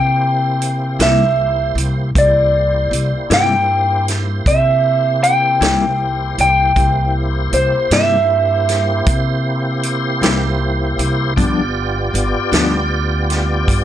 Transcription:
0.00 0.96 C3 medium
0.00 2.10 A#3 medium
0.00 2.10 E4 medium
0.00 2.11 G4 medium
0.00 2.10 C5 medium
0.00 1.02 G5 medium
0.62 closed hi-hat medium
0.99 1.72 C2 medium
0.99 1.23 C3 medium
0.99 1.23 G3 medium
0.99 1.23 A#3 medium
0.99 1.22 E4 medium
0.99 1.74 E5 medium
0.99 snare medium
0.99 closed hi-hat medium
1.75 2.11 C2 medium
1.75 closed hi-hat medium
2.15 2.88 C2 medium
2.15 6.73 A#3 medium
2.15 6.72 E4 medium
2.15 6.72 G4 medium
2.15 6.72 C5 medium
2.15 3.35 D5 medium
2.15 kick medium
2.15 closed hi-hat medium
2.91 3.09 C2 medium
2.91 closed hi-hat medium
3.30 4.41 G2 medium
3.30 3.54 C3 medium
3.30 3.54 G3 medium
3.30 3.53 A#3 medium
3.30 3.53 E4 medium
3.30 4.05 G5 loud
3.30 snare loud
3.30 closed hi-hat medium
4.08 snare soft
4.08 closed hi-hat medium
4.46 5.57 C3 loud
4.46 5.23 E5 medium
4.46 kick loud
4.46 closed hi-hat medium
5.23 6.34 G5 loud
5.23 closed hi-hat soft
5.61 6.34 C2 medium
5.61 5.85 C3 medium
5.61 5.85 G3 medium
5.61 5.84 A#3 medium
5.61 5.84 E4 medium
5.61 snare loud
5.61 closed hi-hat medium
6.38 6.73 C2 medium
6.38 7.12 G5 medium
6.38 closed hi-hat medium
6.76 7.49 C2 medium
6.76 11.33 A#3 medium
6.76 11.34 E4 medium
6.76 11.33 G4 medium
6.76 11.34 C5 medium
6.76 kick medium
6.76 closed hi-hat medium
7.53 7.71 C2 medium
7.53 7.93 C5 medium
7.53 closed hi-hat medium
7.91 9.02 G2 medium
7.91 8.16 C3 medium
7.91 8.16 G3 medium
7.91 8.15 A#3 medium
7.91 8.15 E4 medium
7.91 10.19 E5 loud
7.91 snare loud
7.91 closed hi-hat medium
8.69 snare soft
8.69 closed hi-hat medium
9.06 10.18 C3 loud
9.06 kick loud
9.06 closed hi-hat medium
9.83 closed hi-hat medium
10.21 10.95 C2 medium
10.21 10.46 C3 medium
10.21 10.46 G3 medium
10.21 10.46 A#3 medium
10.21 10.45 E4 medium
10.21 snare medium
10.21 closed hi-hat medium
10.98 11.34 C2 medium
10.98 closed hi-hat medium
11.36 12.10 G1 medium
11.36 11.60 G2 medium
11.36 11.60 F3 medium
11.36 13.84 B3 medium
11.36 11.61 B3 medium
11.36 11.61 D4 medium
11.36 13.84 F4 medium
11.36 13.84 G4 medium
11.36 13.84 D5 medium
11.36 kick loud
11.36 closed hi-hat medium
12.14 12.32 G1 medium
12.14 closed hi-hat medium
12.51 13.64 D2 medium
12.51 12.76 G2 medium
12.51 12.76 F3 medium
12.51 12.76 B3 medium
12.51 12.75 D4 medium
12.51 snare loud
12.51 closed hi-hat medium
13.30 snare soft
13.30 closed hi-hat medium
13.68 13.84 G2 medium
13.68 kick loud
13.68 closed hi-hat medium

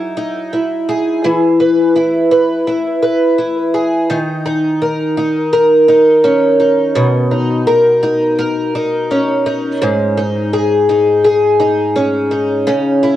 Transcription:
0.00 1.24 F#3 medium
0.00 0.16 D#4 medium
0.00 0.52 E4 medium
0.00 0.88 G#4 medium
0.17 1.31 D#4 medium
0.53 1.95 E4 medium
0.89 3.74 G#4 medium
1.24 4.10 E3 medium
1.60 2.30 B4 medium
1.96 2.66 E4 soft
2.31 3.01 B4 medium
2.67 3.37 E4 medium
3.03 4.17 B4 medium
3.38 4.17 E4 medium
3.74 4.17 G#4 medium
4.10 7.60 D#3 medium
4.46 5.17 D#4 medium
4.82 5.52 A#4 medium
5.17 5.88 D#4 medium
5.53 7.66 A#4 medium
5.88 6.59 D#4 medium
6.24 7.34 C#4 medium
6.60 7.31 D#4 medium
6.95 9.81 B2 medium
7.31 8.02 D#4 medium
7.67 8.37 A#4 medium
8.03 8.74 D#4 medium
8.39 9.89 A#4 medium
8.75 9.45 D#4 medium
9.11 10.20 C#4 medium
9.46 10.17 D#4 medium
9.82 12.67 G#2 medium
10.17 10.89 D#4 medium
10.53 11.24 G#4 medium
10.89 11.59 D#4 medium
11.24 13.16 G#4 medium
11.60 12.31 D#4 medium
11.96 13.16 C#4 medium
12.31 13.02 D#4 medium
12.67 13.16 C#3 medium
13.03 13.16 E4 medium

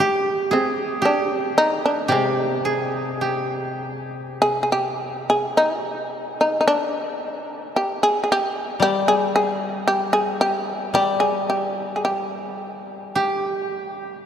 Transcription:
0.00 1.05 G3 soft
0.00 0.57 G4 medium
0.51 1.01 C4 medium
0.51 1.08 G#4 medium
1.02 1.36 D4 medium
1.02 2.08 G4 medium
1.36 1.54 C4 medium
1.58 1.82 D#4 medium
1.86 2.09 D4 medium
2.08 5.47 C3 soft
2.08 2.65 G#3 medium
2.08 2.71 G4 medium
2.65 3.76 C4 medium
2.65 3.27 G#4 medium
3.21 5.25 G4 medium
4.42 4.61 G#4 medium
4.63 4.70 G#4 medium
4.72 5.25 G4 medium
5.30 5.55 G#4 medium
5.57 5.83 D#4 medium
5.83 6.36 G4 medium
6.41 6.59 D#4 medium
6.61 6.67 D#4 medium
6.68 7.71 D4 medium
7.76 8.00 G4 medium
8.03 8.21 G#4 medium
8.24 8.29 G#4 medium
8.32 8.80 G4 medium
8.80 10.93 G3 medium
8.80 9.07 G4 medium
9.08 9.33 G#4 medium
9.36 9.85 G#4 medium
9.88 10.12 G4 medium
10.13 10.39 G#4 medium
10.41 10.91 G4 medium
10.94 14.26 G3 medium
10.94 11.20 G4 medium
11.20 11.47 G#4 medium
11.50 11.81 G4 medium
11.81 11.94 D#4 medium
11.96 12.04 G#4 soft
12.05 12.84 G4 medium
13.15 14.26 G4 medium

